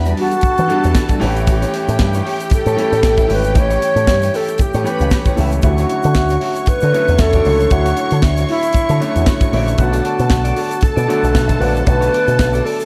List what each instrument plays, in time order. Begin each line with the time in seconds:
Already playing: picked electric bass E2, grand piano E3 G3 B3 D4 F#4 G4, string section B4 B5
0.05 clean electric guitar G3 D4 F#4, closed hi-hat, shaker
0.17 clean electric guitar G3 D4 F#4, alto flute F#4, string section A4 A5, open hi-hat
0.32 muted clean electric guitar stroke, closed hi-hat, shaker
0.41 muted picked electric bass stroke, kick, closed hi-hat, shaker
0.58 picked electric bass E3, muted clean electric guitar stroke, closed hi-hat, shaker
0.68 grand piano E3 G3 B3 D4 A4, clean electric guitar G3 D4 F#4, closed hi-hat
0.84 picked electric bass E2, muted clean electric guitar stroke, closed hi-hat, shaker
0.95 muted clean electric guitar stroke, kick, snare, shaker
1.09 clean electric guitar G3 D4 F#4, kick, closed hi-hat, shaker
1.20 picked electric bass A1, grand piano E3 G3 A3 C#4 G4, clean electric guitar E4 G4 E5, string section G4 G5, snare, open hi-hat
1.36 muted clean electric guitar stroke, closed hi-hat, shaker
1.47 alto flute G4, muted clean electric guitar stroke, kick, closed hi-hat, shaker
1.62 clean electric guitar E4 G4 C#5, closed hi-hat, shaker
1.74 clean electric guitar E4 G4 C#5, closed hi-hat
1.88 picked electric bass A2, muted clean electric guitar stroke, closed hi-hat, shaker
1.99 picked electric bass G2, muted clean electric guitar stroke, kick, snare, shaker
2.14 clean electric guitar E4 G4 C#5, closed hi-hat, shaker
2.25 clean electric guitar E4 G4 C#5, open hi-hat
2.40 muted clean electric guitar stroke, closed hi-hat, shaker
2.50 muted picked electric bass stroke, muted clean electric guitar stroke, kick, closed hi-hat, shaker
2.54 alto flute A4
2.66 picked electric bass A2, clean electric guitar E4 G4 C#5, closed hi-hat, shaker
2.76 grand piano E3 G3 A3 C#4 G4, clean electric guitar E4 G4 C#5, closed hi-hat
2.92 picked electric bass A2, muted clean electric guitar stroke, closed hi-hat, shaker
3.03 picked electric bass A1, muted clean electric guitar stroke, kick, snare, shaker
3.17 clean electric guitar E4 G4 E5, kick, closed hi-hat, shaker
3.28 picked electric bass G#1, grand piano E3 G3 A3 C#4 G4, clean electric guitar E4 G4 C#5, open hi-hat
3.33 alto flute B4
3.44 muted clean electric guitar stroke, closed hi-hat, shaker
3.55 picked electric bass A1, grand piano E3 G3 A3 C#4 G4, alto flute C#5, muted clean electric guitar stroke, kick, closed hi-hat, shaker
3.70 clean electric guitar E4 G4 C#5, closed hi-hat, shaker
3.82 clean electric guitar E4 G4 C#5, closed hi-hat, shaker
3.96 picked electric bass A2, muted clean electric guitar stroke, closed hi-hat, shaker
4.07 picked electric bass G2, muted clean electric guitar stroke, kick, snare, shaker
4.22 clean electric guitar E4 G4 C#5, closed hi-hat, shaker
4.34 clean electric guitar E4 G4 C#5, alto flute A4, open hi-hat, shaker
4.48 muted clean electric guitar stroke, closed hi-hat, shaker
4.58 alto flute G4, muted picked electric bass stroke, muted clean electric guitar stroke, kick, closed hi-hat, shaker
4.74 picked electric bass A2, clean electric guitar E4 G4 C#5, closed hi-hat, shaker
4.84 grand piano E3 G3 A3 C#4 G4, string section B4 B5, muted clean electric guitar stroke, closed hi-hat, shaker
4.99 picked electric bass C#2, muted clean electric guitar stroke, closed hi-hat, shaker
5.11 muted clean electric guitar stroke, kick, snare, shaker
5.25 clean electric guitar E4 G4 C#5, kick, closed hi-hat, shaker
5.37 picked electric bass C#2, grand piano E3 G3 A3 C#4 G4, clean electric guitar E4 G4 E5, open hi-hat, shaker
5.51 muted clean electric guitar stroke, closed hi-hat, shaker
5.62 picked electric bass D2, grand piano D3 F#3 A3 C#4 E4, alto flute F#4, string section C#5 C#6, muted clean electric guitar stroke, kick, closed hi-hat, shaker
5.78 clean electric guitar E4 F#4 C#5, closed hi-hat, shaker
5.90 clean electric guitar E4 F#4 C#5, closed hi-hat
6.03 picked electric bass D3, closed hi-hat, shaker
6.15 picked electric bass D2, muted clean electric guitar stroke, kick, snare, shaker
6.28 clean electric guitar E4 F#4 C#5, closed hi-hat, shaker
6.41 clean electric guitar E4 F#4 C#5, open hi-hat
6.56 muted clean electric guitar stroke, closed hi-hat, shaker
6.66 alto flute B4, muted picked electric bass stroke, muted clean electric guitar stroke, kick, closed hi-hat, shaker
6.81 picked electric bass D3, clean electric guitar E4 F#4 C#5, closed hi-hat, shaker
6.92 grand piano D3 F#3 A3 C#4 E4, clean electric guitar E4 F#4 C#5, closed hi-hat
7.08 picked electric bass E2, muted clean electric guitar stroke, closed hi-hat, shaker
7.18 picked electric bass E2, alto flute A4, muted clean electric guitar stroke, kick, snare, shaker
7.33 clean electric guitar E4 F#4 D5, kick, closed hi-hat, shaker
7.45 picked electric bass C#2, grand piano D3 F#3 A3 C#4 E4, clean electric guitar E4 F#4 C#5, open hi-hat
7.60 muted clean electric guitar stroke, closed hi-hat, shaker
7.70 picked electric bass D2, grand piano D3 F#3 A3 C#4 E4, alto flute F#4, muted clean electric guitar stroke, kick, closed hi-hat, shaker
7.86 clean electric guitar E4 F#4 C#5, closed hi-hat, shaker
7.97 clean electric guitar E4 F#4 C#5, closed hi-hat
8.11 picked electric bass D3, muted clean electric guitar stroke, closed hi-hat, shaker
8.22 picked electric bass D2, muted clean electric guitar stroke, kick, snare, shaker
8.37 clean electric guitar E4 F#4 C#5, closed hi-hat, shaker
8.49 clean electric guitar E4 F#4 C#5, alto flute E4, open hi-hat
8.63 muted clean electric guitar stroke, closed hi-hat, shaker
8.73 muted picked electric bass stroke, muted clean electric guitar stroke, kick, closed hi-hat, shaker
8.89 picked electric bass D3, clean electric guitar E4 F#4 C#5, closed hi-hat, shaker
9.00 grand piano D3 F#3 A3 C#4 E4, clean electric guitar E4 F#4 C#5, closed hi-hat
9.16 picked electric bass E2, muted clean electric guitar stroke, closed hi-hat, shaker
9.26 muted clean electric guitar stroke, kick, snare, shaker
9.40 clean electric guitar E4 F#4 C#5, kick, closed hi-hat, shaker
9.52 picked electric bass A#1, grand piano D3 F#3 A3 C#4 E4, clean electric guitar E4 F#4 D5, open hi-hat
9.67 muted clean electric guitar stroke, closed hi-hat, shaker
9.77 picked electric bass B1, grand piano D3 F#3 A3 B3 F#4, alto flute F#4, string section A4 A5, muted clean electric guitar stroke, kick, closed hi-hat, shaker
9.92 clean electric guitar F#4 A4 D5, closed hi-hat, shaker
10.05 clean electric guitar F#4 A4 D5, closed hi-hat
10.19 picked electric bass B2, muted clean electric guitar stroke, closed hi-hat, shaker
10.30 picked electric bass B1, muted clean electric guitar stroke, kick, snare, shaker
10.44 clean electric guitar F#4 A4 D5, closed hi-hat, shaker
10.56 clean electric guitar F#4 A4 D5, open hi-hat
10.71 muted clean electric guitar stroke, closed hi-hat, shaker
10.81 alto flute A4, muted clean electric guitar stroke, muted picked electric bass stroke, kick, closed hi-hat, shaker
10.96 picked electric bass B2, clean electric guitar F#4 A4 D5, closed hi-hat, shaker
11.08 grand piano D3 F#3 A3 B3 F#4, clean electric guitar F#4 A4 D5, closed hi-hat
11.23 picked electric bass B1, muted clean electric guitar stroke, closed hi-hat, shaker
11.34 picked electric bass B1, muted clean electric guitar stroke, kick, snare, shaker
11.48 clean electric guitar F#4 A4 E5, kick, closed hi-hat, shaker
11.60 picked electric bass A#1, grand piano D3 F#3 A3 B3 F#4, clean electric guitar F#4 A4 D5, alto flute B4, open hi-hat
11.76 muted clean electric guitar stroke, closed hi-hat, shaker
11.85 picked electric bass B1, grand piano D3 F#3 A3 B3 F#4, alto flute B4, muted clean electric guitar stroke, kick, closed hi-hat, shaker
12.01 clean electric guitar F#4 A4 D5, closed hi-hat, shaker
12.13 clean electric guitar F#4 A4 D5, closed hi-hat
12.28 picked electric bass B2, muted clean electric guitar stroke, closed hi-hat, shaker
12.39 picked electric bass B1, muted clean electric guitar stroke, kick, snare, shaker
12.53 clean electric guitar F#4 A4 D5, closed hi-hat, shaker
12.64 clean electric guitar F#4 A4 D5, alto flute A4, open hi-hat
12.79 muted clean electric guitar stroke, closed hi-hat, shaker